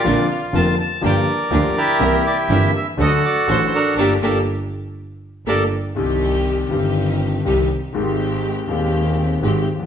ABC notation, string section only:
X:1
M:4/4
L:1/8
Q:1/4=122
K:Gm
V:1 name="String section"
[CDB] z [CDB] z [B,FG] z [B,FG] z | [C=EB] z [CEB] z [D^FA] z [DFA] z | [B,DG] [B,DG] z4 [B,DG] z | [K:Cm] [CEG]3 [CEG]3 [CEG] z |
[A,CG]3 [A,CG]3 [A,CG] z |]